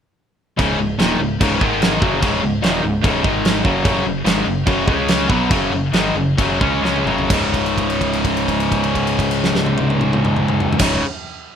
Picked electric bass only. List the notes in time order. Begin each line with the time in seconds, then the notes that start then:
0.59 C#1
0.78 C#1
0.99 D#1
1.19 C#1
1.41 C#1
1.61 G#1
2.01 F#1
2.23 C#1
2.43 C#1
2.63 D#1
2.83 C#1
3.04 C#1
3.24 G#1
3.65 F#1
3.85 F#1
4.05 F#1
4.25 G#1
4.46 F#1
4.66 F#1
4.87 C#2
5.29 B1
5.50 F#1
5.70 F#1
5.93 G#1
6.15 F#1
6.39 F#1
6.61 C#2
6.82 C#2
7.06 F#1
7.30 C#1
10.80 C#1